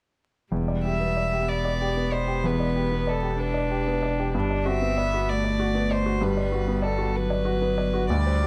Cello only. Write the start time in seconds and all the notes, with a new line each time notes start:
0.53 G3
1.49 B3
3.40 D4
4.35 D4
4.66 C4
4.98 B3
5.28 A3
6.22 G3
7.16 F#3
8.11 G3
8.43 A3